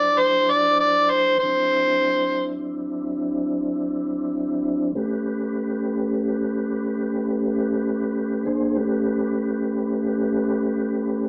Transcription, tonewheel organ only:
Already playing: F#3 D4 E4 C5
1.42 F#3 C4 D4 E4
4.95 A3 C#4 G4 B4
8.46 A#3 D4 G#4 C5
8.76 A3 C#4 G4 B4

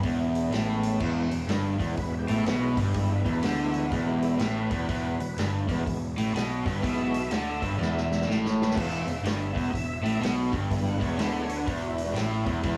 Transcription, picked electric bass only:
0.03 E1
0.50 A1
1.01 E1
1.32 E1
1.48 G1
1.80 E1
1.97 E1
2.28 A1
2.46 B1
2.77 G1
3.25 E1
3.44 D2
3.91 E1
4.39 A1
4.71 E1
4.89 E1
5.18 E1
5.38 G1
5.68 E1
5.86 E1
6.18 A1
6.34 B1
6.66 G1
6.83 B1
7.31 D2
7.61 G1
7.79 E1
8.27 A1
8.77 E1
9.06 E1
9.23 G1
9.56 E1
9.73 E1
10.03 A1
10.20 B1
10.52 G1
11.00 E1
11.18 D2
11.67 E1
12.13 A1
12.46 E1
12.64 E1

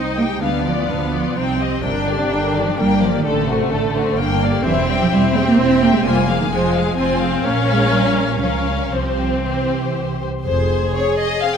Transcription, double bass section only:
Already playing: C2
0.41 D2
0.88 D2
1.35 C2
1.83 G1
2.31 G1
2.78 G1
3.25 A1
3.71 A1
4.18 G1
4.65 E1
5.12 E1
5.58 E1
6.04 F1
6.50 F1
6.97 F1
7.44 A#1
8.40 C#2
8.92 C2
10.46 F1

